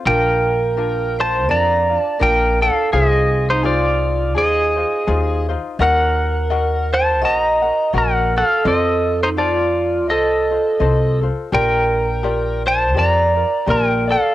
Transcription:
0.06 1.49 A#1 medium
0.06 0.76 D4 medium
0.06 0.77 F4 medium
0.06 0.76 A#4 medium
0.06 1.15 A#4 medium
0.06 1.20 G5 loud
0.77 1.48 D4 medium
0.77 1.50 F4 medium
0.77 1.47 A#4 medium
1.19 1.47 C5 medium
1.19 1.48 C5 medium
1.19 1.51 A5 medium
1.48 1.96 F2 loud
1.48 1.90 D4 medium
1.48 1.89 F4 medium
1.48 1.90 A#4 medium
1.48 2.17 D5 medium
1.48 2.18 D5 medium
1.48 1.98 A#5 loud
1.90 2.19 D4 soft
1.90 2.20 F4 soft
1.98 2.18 A5 loud
2.19 2.68 A#1 medium
2.19 2.62 D4 medium
2.19 2.61 F4 medium
2.19 2.61 A#4 medium
2.19 2.59 A#4 medium
2.19 2.60 A#4 medium
2.19 2.62 G5 medium
2.61 2.93 D4 soft
2.61 2.92 F4 soft
2.61 2.90 A4 medium
2.61 2.92 A4 medium
2.61 2.91 A4 medium
2.61 2.93 F5 medium
2.92 4.35 C2 medium
2.92 3.64 D#4 medium
2.92 3.63 F4 medium
2.92 3.45 G#4 medium
2.92 3.62 G#4 medium
2.92 3.45 G#4 medium
2.92 3.64 C5 medium
2.92 3.10 E5 medium
3.10 3.50 D#5 medium
3.49 3.63 D#4 medium
3.49 3.64 D#4 medium
3.49 3.65 C5 medium
3.63 4.35 D#4 medium
3.63 4.35 F4 medium
3.63 4.36 F4 medium
3.63 4.33 F4 medium
3.63 4.33 G#4 medium
3.63 4.36 C5 medium
3.63 4.39 D5 loud
4.35 4.82 D#2 medium
4.35 4.77 D#4 soft
4.35 4.77 F4 medium
4.35 4.77 G#4 medium
4.35 5.45 G#4 medium
4.35 5.46 G#4 medium
4.35 4.75 C5 medium
4.35 5.46 D#5 medium
4.77 5.06 D#4 soft
4.77 5.07 F4 soft
4.77 5.07 C5 soft
5.07 5.54 D#2 medium
5.07 5.49 D#4 medium
5.07 5.48 F4 medium
5.07 5.49 G#4 medium
5.07 5.48 C5 medium
5.49 5.80 D#4 medium
5.49 5.80 F4 medium
5.49 5.79 C5 medium
5.79 7.23 D#2 medium
5.79 6.50 F#4 medium
5.79 6.50 A#4 medium
5.79 6.89 A#4 medium
5.79 6.90 A#4 medium
5.79 6.50 D#5 medium
5.79 6.50 F#5 medium
5.79 6.94 F#5 medium
6.50 7.21 F#4 medium
6.50 7.21 A#4 medium
6.50 7.21 D#5 medium
6.50 7.22 F#5 medium
6.93 7.21 C5 medium
6.93 7.21 A5 loud
7.21 7.69 A#1 medium
7.21 7.63 F#4 medium
7.21 7.62 A#4 medium
7.21 7.63 D#5 medium
7.21 7.90 D#5 medium
7.21 7.92 D#5 medium
7.21 7.61 F#5 medium
7.21 7.36 A5 loud
7.36 7.98 A#5 loud
7.62 7.92 F#4 soft
7.62 7.93 A#4 soft
7.62 7.93 F#5 medium
7.93 8.40 A#1 medium
7.93 8.35 F#4 medium
7.93 8.36 A#4 medium
7.93 8.33 A#4 medium
7.93 8.35 D#5 medium
7.93 8.36 F#5 medium
7.98 8.35 A#4 medium
7.98 8.37 F#5 medium
8.36 8.65 F#4 soft
8.36 8.64 A4 medium
8.36 8.65 A4 medium
8.36 8.65 F5 loud
8.64 10.09 F2 loud
8.64 9.37 F4 medium
8.64 9.37 A4 medium
8.64 9.19 A4 medium
8.64 9.36 C5 medium
8.64 9.37 D#5 medium
8.64 9.23 D#5 medium
9.23 9.29 D#4 medium
9.23 9.31 D#4 medium
9.23 9.28 C5 medium
9.37 10.09 F4 medium
9.37 10.05 F4 medium
9.37 10.06 F4 medium
9.37 10.09 A4 medium
9.37 10.07 C5 medium
9.37 10.10 D5 medium
10.08 10.55 C2 medium
10.08 10.50 F4 medium
10.08 10.49 A4 medium
10.08 11.19 A4 medium
10.08 10.50 C5 medium
10.08 10.50 D#5 soft
10.08 11.19 D#5 medium
10.50 10.79 F4 soft
10.50 10.80 A4 soft
10.50 10.80 C5 soft
10.80 11.27 C2 medium
10.80 11.22 F4 medium
10.80 11.20 A4 medium
10.80 11.21 C5 medium
10.80 11.21 D#5 medium
11.21 11.52 F4 soft
11.21 11.52 A4 medium
11.21 11.52 C5 medium
11.52 12.96 A#1 medium
11.52 12.22 F4 medium
11.52 12.23 G4 medium
11.52 12.23 A#4 medium
11.52 12.62 A#4 medium
11.52 12.24 D5 medium
11.52 12.62 G5 loud
12.23 12.94 F4 medium
12.23 12.94 G4 medium
12.23 12.96 A#4 medium
12.23 12.96 D5 medium
12.66 12.94 C5 medium
12.66 12.98 A5 loud
12.95 13.42 F2 loud
12.95 13.36 F4 medium
12.95 13.36 G4 medium
12.95 13.35 A#4 medium
12.95 13.34 D5 medium
12.95 13.64 D5 medium
12.99 13.71 A#5 loud
13.35 13.66 F4 soft
13.35 13.66 A#4 soft
13.35 13.66 D5 soft
13.66 14.14 A#1 medium
13.66 14.08 F4 medium
13.66 14.08 G4 medium
13.66 14.08 A#4 medium
13.66 14.06 A#4 medium
13.66 14.07 A#4 medium
13.66 14.06 D5 medium
13.71 14.12 G5 medium
14.08 14.35 F4 soft
14.08 14.35 A4 medium
14.08 14.35 D5 medium
14.12 14.35 F5 loud

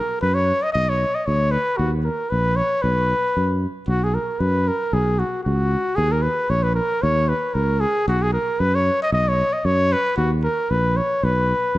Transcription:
0.00 0.21 A#4 medium
0.22 0.51 F#2 medium
0.22 0.36 B4 medium
0.34 0.65 C#5 medium
0.63 0.72 D#5 medium
0.73 1.04 B1 medium
0.73 0.91 D#5 medium
0.89 1.16 C#5 medium
1.15 1.27 D#5 medium
1.26 1.56 D2 medium
1.26 1.53 C#5 medium
1.51 1.79 B4 medium
1.77 2.08 D#2 medium
1.77 1.92 F#4 medium
2.04 2.31 A#4 medium
2.29 2.61 A#1 medium
2.29 2.57 B4 medium
2.56 2.83 C#5 medium
2.82 3.12 B1 medium
2.82 3.61 B4 medium
3.37 3.65 F#2 medium
3.87 4.17 B1 medium
3.87 4.05 F#4 medium
4.04 4.16 G#4 medium
4.14 4.41 A#4 medium
4.40 4.69 F#2 medium
4.40 4.69 B4 medium
4.68 4.95 A#4 medium
4.93 5.22 B1 loud
4.93 5.21 G#4 medium
5.19 5.43 F#4 medium
5.43 5.75 C#2 medium
5.43 5.97 F#4 medium
5.96 6.27 D#2 medium
5.96 6.13 G#4 loud
6.12 6.24 A#4 medium
6.22 6.52 B4 medium
6.50 6.79 A#1 medium
6.50 6.64 C#5 medium
6.63 6.74 B4 medium
6.75 7.04 A#4 medium
7.02 7.32 D#2 medium
7.02 7.30 C#5 loud
7.29 7.55 B4 medium
7.54 7.84 C#2 medium
7.54 7.82 A#4 medium
7.80 8.07 G#4 medium
8.08 8.37 B1 medium
8.08 8.24 F#4 medium
8.23 8.33 G#4 medium
8.33 8.61 A#4 medium
8.60 8.89 F#2 medium
8.60 8.76 B4 medium
8.75 9.01 C#5 loud
9.02 9.12 D#5 medium
9.12 9.41 B1 medium
9.12 9.30 D#5 medium
9.28 9.55 C#5 medium
9.53 9.67 D#5 medium
9.65 9.94 F#2 medium
9.65 9.94 C#5 loud
9.92 10.16 B4 medium
10.17 10.46 D#2 medium
10.17 10.31 F#4 medium
10.44 10.72 A#4 medium
10.71 10.99 A#1 medium
10.71 10.98 B4 medium
10.97 11.25 C#5 medium
11.23 11.52 B1 medium
11.23 11.78 B4 medium
11.75 11.78 F#2 medium

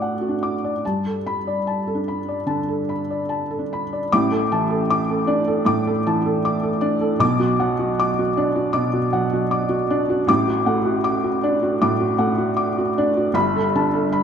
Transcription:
0.00 0.84 A3 medium
0.00 0.29 D4 medium
0.00 0.21 F#4 medium
0.00 0.64 D5 medium
0.00 0.02 F#5 medium
0.00 0.33 F#5 medium
0.00 0.43 D6 medium
0.21 0.53 F#4 soft
0.29 0.72 D4 soft
0.43 0.75 D6 medium
0.64 0.83 D5 soft
0.85 2.44 G2 medium
0.85 1.17 A5 medium
1.07 1.38 A4 medium
1.27 1.58 B5 medium
1.47 1.78 D5 medium
1.67 1.98 A5 medium
1.87 2.19 A4 medium
1.95 2.37 D4 soft
2.08 2.39 B5 medium
2.28 2.60 D5 medium
2.46 2.90 D3 medium
2.46 2.79 A5 medium
2.68 3.00 A4 soft
2.89 3.21 B5 medium
3.10 3.41 D5 soft
3.29 3.61 A5 medium
3.51 3.82 A4 soft
3.59 4.00 D4 soft
3.73 4.03 B5 medium
3.93 4.11 D5 medium
4.12 5.65 A1 medium
4.12 5.64 A2 medium
4.12 4.42 D6 medium
4.31 4.62 A4 medium
4.52 5.14 E3 medium
4.52 4.82 A5 medium
4.70 5.01 A4 medium
4.90 5.21 D6 medium
5.09 5.40 A4 medium
5.27 5.90 D4 medium
5.27 5.59 D5 medium
5.48 5.79 A4 medium
5.65 7.16 A2 medium
5.65 5.98 D6 medium
5.87 6.18 A4 medium
6.07 6.68 E3 medium
6.07 6.37 A5 medium
6.26 6.56 A4 medium
6.45 6.75 D6 medium
6.63 6.94 A4 medium
6.81 7.21 D4 medium
6.81 7.13 D5 medium
7.01 7.21 A4 medium
7.19 8.70 B1 medium
7.19 8.70 B2 medium
7.19 7.52 D6 loud
7.40 7.71 F#4 medium
7.60 8.22 F#3 medium
7.60 7.91 F#5 medium
7.79 8.10 F#4 medium
8.00 8.30 D6 medium
8.19 8.49 F#4 medium
8.37 8.98 D4 medium
8.37 8.68 D5 medium
8.56 8.86 F#4 medium
8.73 10.23 B2 medium
8.73 9.04 D6 medium
8.93 9.24 F#4 medium
9.13 9.74 F#3 medium
9.13 9.43 F#5 medium
9.33 9.63 F#4 medium
9.51 9.82 D6 medium
9.69 10.01 F#4 medium
9.90 10.29 D4 medium
9.90 10.21 D5 medium
10.10 10.29 F#4 medium
10.27 11.77 A1 medium
10.27 11.78 A2 medium
10.27 10.59 D6 medium
10.48 10.78 F#4 medium
10.66 11.28 A3 medium
10.66 10.97 F#5 medium
10.85 11.16 F#4 medium
11.04 11.36 D6 medium
11.24 11.55 F#4 medium
11.43 12.05 D4 medium
11.43 11.74 D5 medium
11.63 11.93 F#4 medium
11.82 13.31 A2 medium
11.82 12.12 D6 medium
12.00 12.31 F#4 medium
12.18 12.80 A3 medium
12.18 12.50 F#5 medium
12.38 12.69 F#4 medium
12.57 12.88 D6 medium
12.78 13.08 F#4 medium
12.98 13.36 D4 medium
12.98 13.28 D5 medium
13.17 13.35 F#4 medium
13.34 14.23 G1 medium
13.34 14.23 G2 medium
13.34 13.66 B5 loud
13.56 13.86 A4 medium
13.76 14.23 D3 medium
13.76 14.05 A5 medium
13.94 14.23 A4 medium
14.12 14.23 B5 medium

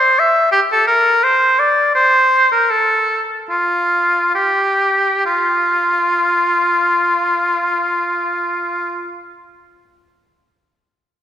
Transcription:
0.00 0.21 C5 medium
0.19 0.51 E5 medium
0.52 0.60 G4 medium
0.72 0.87 A4 medium
0.87 1.25 A#4 medium
1.23 1.60 C5 medium
1.59 1.94 D5 medium
1.95 2.49 C5 medium
2.52 2.72 A#4 medium
2.71 3.21 A4 medium
3.50 4.30 F4 medium
4.35 5.24 G4 medium
5.26 9.11 F4 medium

